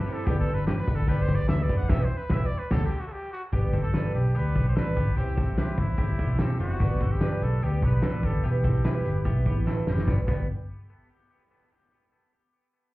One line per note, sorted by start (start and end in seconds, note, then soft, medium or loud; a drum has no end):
0.00 0.14 B4 loud
0.06 0.26 G3 soft
0.06 0.26 B3 medium
0.06 0.28 C4 soft
0.06 0.27 E4 medium
0.06 0.26 G4 medium
0.06 0.27 C5 medium
0.06 open hi-hat medium
0.13 0.27 A4 loud
0.25 0.44 G1 loud
0.25 0.48 G3 medium
0.25 0.48 B3 medium
0.25 0.48 D4 medium
0.25 0.39 G4 loud
0.25 0.47 G4 loud
0.25 0.48 G4 medium
0.25 0.46 B4 medium
0.25 kick loud
0.25 closed hi-hat medium
0.39 0.56 A4 loud
0.47 0.73 G1 loud
0.47 0.68 C4 medium
0.47 0.68 D4 soft
0.47 0.69 G4 medium
0.47 0.68 A4 medium
0.47 0.68 B4 medium
0.47 closed hi-hat medium
0.54 0.66 B4 loud
0.67 0.88 G3 medium
0.67 1.07 D4 medium
0.67 0.89 D4 medium
0.67 0.73 G4 loud
0.67 0.89 G4 medium
0.67 1.07 B4 loud
0.67 snare loud
0.67 clap loud
0.67 closed hi-hat medium
0.71 0.87 B4 medium
0.79 0.97 B4 loud
0.87 1.46 G1 loud
0.87 1.07 D4 soft
0.87 1.08 G4 medium
0.87 1.08 B4 medium
0.87 kick loud
0.87 closed hi-hat medium
0.95 1.10 A4 loud
1.07 1.29 G3 medium
1.07 1.29 B3 medium
1.07 1.29 D4 medium
1.07 1.29 G4 loud
1.07 1.29 G4 medium
1.07 1.24 B4 loud
1.07 1.28 B4 loud
1.07 kick medium
1.07 closed hi-hat medium
1.22 1.36 C5 loud
1.28 1.50 B3 medium
1.28 1.49 G4 medium
1.28 1.50 G4 medium
1.28 1.49 B4 medium
1.28 kick medium
1.28 closed hi-hat medium
1.32 1.49 D4 medium
1.32 1.48 D5 loud
1.48 1.67 D2 medium
1.48 1.69 G3 medium
1.48 1.70 D4 medium
1.48 1.71 G4 medium
1.48 1.70 A4 medium
1.48 1.68 B4 medium
1.48 1.65 E5 loud
1.48 snare loud
1.48 clap loud
1.48 closed hi-hat medium
1.63 1.76 D5 loud
1.69 1.87 F#1 loud
1.69 1.90 B3 medium
1.69 1.89 D4 soft
1.69 1.89 G4 medium
1.69 1.90 G4 medium
1.69 1.90 B4 medium
1.69 kick medium
1.69 open hi-hat medium
1.77 1.91 F#5 loud
1.89 2.04 E1 loud
1.89 2.04 E3 loud
1.89 2.04 G3 loud
1.89 2.04 B3 loud
1.89 2.04 E4 loud
1.89 2.04 G4 loud
1.89 2.04 G4 medium
1.89 2.05 B4 loud
1.89 2.06 E5 loud
1.89 kick loud
1.89 snare loud
1.89 crash medium
2.04 2.19 C5 loud
2.17 2.33 B4 loud
2.30 2.45 E1 loud
2.30 2.45 G3 loud
2.30 2.45 E4 loud
2.30 2.46 E4 loud
2.30 2.46 G4 loud
2.30 2.45 B4 loud
2.30 2.47 E5 loud
2.30 kick loud
2.30 snare loud
2.34 2.47 B4 loud
2.46 2.60 D5 loud
2.58 2.72 B4 loud
2.71 2.86 D2 loud
2.71 2.85 D3 loud
2.71 2.86 G3 loud
2.71 2.86 D4 loud
2.71 2.86 G4 loud
2.71 2.85 A4 loud
2.71 2.86 A4 loud
2.71 kick loud
2.71 snare loud
2.71 crash medium
2.85 3.01 G4 loud
3.00 3.07 F#4 medium
3.07 3.13 A4 medium
3.12 3.32 G4 loud
3.33 3.42 F#4 loud
3.52 4.11 G1 loud
3.52 3.73 G3 medium
3.52 3.74 B3 medium
3.52 3.74 D4 medium
3.52 3.74 G4 loud
3.52 3.82 G4 medium
3.52 3.74 G4 medium
3.52 3.72 B4 medium
3.52 kick loud
3.52 closed hi-hat medium
3.73 3.94 C4 medium
3.73 3.94 D4 soft
3.73 3.94 G4 soft
3.73 3.94 A4 medium
3.73 3.94 B4 soft
3.73 kick medium
3.73 closed hi-hat medium
3.83 4.12 A4 loud
3.93 4.15 G3 medium
3.93 4.15 D4 medium
3.93 4.33 D4 medium
3.93 4.15 G4 medium
3.93 4.33 B4 medium
3.93 4.14 B4 medium
3.93 snare loud
3.93 closed hi-hat medium
4.14 4.32 B1 medium
4.14 4.38 G4 medium
4.14 4.35 G4 soft
4.14 4.35 B4 soft
4.14 closed hi-hat medium
4.18 4.35 D4 soft
4.34 4.53 D2 medium
4.34 4.55 G3 medium
4.34 4.55 B3 medium
4.34 4.56 D4 medium
4.34 4.55 G4 medium
4.34 4.68 B4 loud
4.34 4.53 B4 medium
4.34 closed hi-hat medium
4.55 4.73 B1 medium
4.55 4.76 B3 medium
4.55 4.75 D4 soft
4.55 4.75 G4 medium
4.55 4.76 G4 medium
4.55 4.76 B4 soft
4.55 kick medium
4.55 closed hi-hat medium
4.69 4.78 C5 medium
4.75 4.94 A1 medium
4.75 4.96 G3 medium
4.75 4.97 D4 medium
4.75 4.96 G4 medium
4.75 4.96 A4 medium
4.75 5.17 B4 loud
4.75 4.94 B4 medium
4.75 snare loud
4.75 closed hi-hat medium
4.95 5.15 G1 medium
4.95 5.17 B3 medium
4.95 5.17 D4 soft
4.95 5.15 G4 medium
4.95 5.17 G4 medium
4.95 5.16 B4 medium
4.95 kick medium
4.95 closed hi-hat medium
5.16 5.78 C2 loud
5.16 5.37 C3 medium
5.16 5.38 E3 medium
5.16 5.37 G3 medium
5.16 5.37 C4 medium
5.16 5.35 E4 medium
5.16 5.37 G4 medium
5.16 5.55 G4 medium
5.16 5.34 C5 medium
5.16 closed hi-hat medium
5.35 5.56 G3 soft
5.35 5.56 C4 soft
5.35 5.58 C4 medium
5.35 5.57 E4 soft
5.35 5.58 A4 medium
5.35 5.57 C5 soft
5.35 kick medium
5.35 closed hi-hat medium
5.57 5.78 C3 medium
5.57 5.78 E3 medium
5.57 5.78 G3 medium
5.57 5.77 C4 medium
5.57 5.77 E4 medium
5.57 5.97 E4 medium
5.57 5.81 G4 medium
5.57 5.96 B4 medium
5.57 5.75 C5 medium
5.57 snare loud
5.57 closed hi-hat medium
5.77 5.96 E2 medium
5.77 5.96 G3 soft
5.77 5.97 C4 soft
5.77 5.98 E4 soft
5.77 6.41 E4 loud
5.77 5.98 C5 soft
5.77 kick loud
5.77 closed hi-hat medium
5.97 6.16 G1 medium
5.97 6.18 G3 medium
5.97 6.18 C4 medium
5.97 6.19 C4 medium
5.97 6.17 E4 medium
5.97 6.18 G4 medium
5.97 6.16 C5 medium
5.97 kick medium
5.97 closed hi-hat medium
6.18 6.54 E1 medium
6.18 6.39 G3 soft
6.18 6.40 B3 medium
6.18 6.39 C4 soft
6.18 6.39 E4 soft
6.18 6.40 G4 medium
6.18 6.39 C5 medium
6.18 kick medium
6.18 closed hi-hat medium
6.39 6.60 C3 medium
6.39 6.60 E3 medium
6.39 6.60 G3 medium
6.39 6.60 C4 medium
6.39 6.61 C4 medium
6.39 6.59 E4 medium
6.39 6.60 G4 medium
6.39 6.60 A4 medium
6.39 6.58 C5 medium
6.39 snare loud
6.39 closed hi-hat medium
6.59 6.77 F#1 medium
6.59 6.78 G3 soft
6.59 6.81 B3 medium
6.59 6.80 C4 soft
6.59 6.80 E4 soft
6.59 7.13 F#4 loud
6.59 6.80 G4 medium
6.59 6.80 C5 medium
6.59 closed hi-hat medium
6.79 7.39 G1 loud
6.79 7.00 G3 medium
6.79 7.02 B3 medium
6.79 7.01 D4 medium
6.79 7.01 G4 loud
6.79 7.00 G4 medium
6.79 6.99 B4 medium
6.79 kick loud
6.79 closed hi-hat medium
7.00 7.22 C4 medium
7.00 7.20 D4 soft
7.00 7.21 G4 soft
7.00 7.22 A4 medium
7.00 7.21 B4 medium
7.00 kick medium
7.00 closed hi-hat medium
7.12 7.45 G4 loud
7.20 7.42 G3 medium
7.20 7.42 D4 medium
7.20 7.61 D4 medium
7.20 7.41 G4 medium
7.20 7.60 B4 medium
7.20 7.40 B4 medium
7.20 snare loud
7.20 clap loud
7.20 closed hi-hat medium
7.41 7.59 B1 medium
7.41 7.61 D4 soft
7.41 7.62 G4 medium
7.41 7.65 A4 medium
7.41 7.62 B4 medium
7.41 closed hi-hat medium
7.61 7.80 D2 medium
7.61 7.82 G3 medium
7.61 7.83 B3 medium
7.61 7.83 D4 medium
7.61 7.82 G4 medium
7.61 7.83 G4 medium
7.61 7.86 G4 medium
7.61 7.80 B4 medium
7.61 closed hi-hat medium
7.81 8.00 B1 medium
7.81 8.04 B3 medium
7.81 8.02 D4 soft
7.81 8.03 G4 soft
7.81 8.03 G4 medium
7.81 8.02 B4 soft
7.81 8.27 B4 loud
7.81 kick medium
7.81 closed hi-hat medium
8.02 8.25 A1 medium
8.02 8.23 G3 medium
8.02 8.24 D4 medium
8.02 8.23 G4 medium
8.02 8.23 A4 medium
8.02 8.21 B4 medium
8.02 snare loud
8.02 clap medium
8.02 closed hi-hat medium
8.22 8.41 G1 medium
8.22 8.44 B3 medium
8.22 8.43 D4 soft
8.22 8.43 G4 medium
8.22 8.43 G4 soft
8.22 8.45 A4 loud
8.22 8.43 B4 medium
8.22 kick medium
8.22 closed hi-hat medium
8.42 9.02 E1 loud
8.42 8.63 E3 medium
8.42 8.64 G3 medium
8.42 8.65 B3 medium
8.42 8.64 E4 medium
8.42 8.64 G4 medium
8.42 9.63 G4 medium
8.42 8.63 B4 medium
8.42 closed hi-hat medium
8.64 8.85 C4 medium
8.64 8.84 E4 soft
8.64 8.84 G4 soft
8.64 8.85 A4 medium
8.64 8.84 B4 soft
8.64 kick loud
8.64 closed hi-hat medium
8.84 9.05 E3 medium
8.84 9.05 G3 medium
8.84 9.05 E4 medium
8.84 9.24 E4 medium
8.84 9.04 G4 medium
8.84 9.23 B4 medium
8.84 9.03 B4 medium
8.84 snare loud
8.84 clap loud
8.84 closed hi-hat medium
9.04 9.26 G1 medium
9.04 9.25 E4 soft
9.04 9.25 G4 medium
9.04 9.25 B4 medium
9.04 closed hi-hat medium
9.25 9.43 B1 medium
9.25 9.46 G3 medium
9.25 9.46 B3 medium
9.25 9.46 E4 medium
9.25 9.46 G4 medium
9.25 9.45 B4 medium
9.25 kick medium
9.25 clap medium
9.25 closed hi-hat medium
9.46 9.81 A1 medium
9.46 9.67 B3 medium
9.46 9.66 E4 medium
9.46 9.67 G4 medium
9.46 9.66 G4 medium
9.46 9.66 B4 medium
9.46 kick medium
9.46 closed hi-hat medium
9.66 9.87 E3 medium
9.66 9.87 G3 medium
9.66 9.87 E4 medium
9.66 9.88 E4 medium
9.66 9.87 G4 loud
9.66 9.87 A4 medium
9.66 9.86 B4 medium
9.66 snare medium
9.66 clap medium
9.87 10.05 F#1 medium
9.87 10.07 B3 medium
9.87 10.07 E4 medium
9.87 10.08 G4 medium
9.87 10.07 G4 medium
9.87 10.07 B4 medium
9.87 snare medium
9.98 snare medium
10.06 10.19 G1 loud
10.06 10.19 G3 medium
10.06 10.19 B3 medium
10.06 10.20 D4 medium
10.06 10.20 G4 medium
10.06 10.21 B4 medium
10.06 kick loud
10.06 snare medium
10.06 clap medium
10.27 10.47 G1 medium
10.27 10.44 G3 medium
10.27 10.47 B3 medium
10.27 10.44 D4 medium
10.27 10.45 G4 medium
10.27 10.45 B4 medium
10.27 kick loud
10.27 clap medium
10.27 crash medium